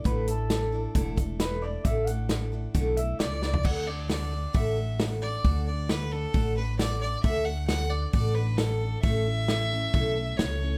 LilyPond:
<<
  \new Staff \with { instrumentName = "Clean electric guitar" } { \time 4/4 \key d \major \tempo 4 = 134 b'8 a'2 r8 b'8 d''8 | e''8 fis''2 e''8 d''8 d''8 | r1 | r1 |
r1 | r1 | }
  \new Staff \with { instrumentName = "Fiddle" } { \time 4/4 \key d \major r1 | r2. d''4 | fis''8 d''8 d''4 e''4 r8 d''8~ | d''8 d''8 b'8 a'4 b'8 d''8 d''8 |
e''8 fis''8 fis''8 d''8 d''8 b'8 a'4 | e''2. cis''4 | }
  \new Staff \with { instrumentName = "Steel-string acoustic guitar" } { \time 4/4 \key d \major <a, d a d' e' a'>8 <a d' e' a'>8 <a d' e' a'>8 <a d' e' a'>8 <a, d a d' e' a'>8 <a d' e' a'>8 <a d' e' a'>8 <a d' e' a'>8 | <a, d a d' e' a'>8 <a d' e' a'>8 <a d' e' a'>8 <a d' e' a'>8 <a, d a d' e' a'>8 <a d' a'>8 <a d' e' a'>8 <a d' e' a'>8 | <d a d' fis' a'>8 <d' fis' a'>8 <a d' fis' a'>8 <d' fis' a'>8 <d a d' fis' a'>8 <d' fis' a'>8 <a d' fis' a'>8 <d' fis' a'>8 | <d a d' fis' a'>8 <d' fis' a'>8 <a d' fis' a'>8 <d' fis' a'>8 <d a d' fis' a'>8 <d' fis' a'>8 <a d' fis' a'>8 <d' fis' a'>8 |
<d a d' fis' a'>8 <d' fis' a'>8 <a d' fis' a'>8 <d' fis' a'>8 <d a d' fis' a'>8 <d' fis' a'>8 <a d' fis' a'>8 <d' fis' a'>8 | <a, e a cis' e' a'>8 <a cis' e' a'>8 <a cis' e' a'>8 <a cis' e' a'>8 <a, e a cis' e' a'>8 <a cis' e' a'>8 <a cis' e' a'>8 <a cis' e' a'>8 | }
  \new Staff \with { instrumentName = "Upright bass" } { \clef bass \time 4/4 \key d \major a,,2 e,,2 | a,,2 b,,4 cis,4 | d,2 a,,2 | d,2 a,,2 |
d,2 a,,2 | a,,2 b,,4 cis,4 | }
  \new DrumStaff \with { instrumentName = "Drums" } \drummode { \time 4/4 <hh bd>8 hh8 <hh sn>4 <hh bd>8 <hh bd>8 <hh sn>4 | <hh bd>8 hh8 <hh sn>4 <hh bd>8 hh8 <hh sn>8 sn16 tomfh16 | <cymc bd>4 <hho sn>4 <hho bd>4 <hho sn>4 | <hho bd>4 <hho sn>4 <hho bd>4 <hho sn>4 |
<hho bd>4 <hho sn>4 <hho bd>4 <hho sn>4 | <hho bd>4 <hho sn>4 <hho bd>4 <hho sn>4 | }
>>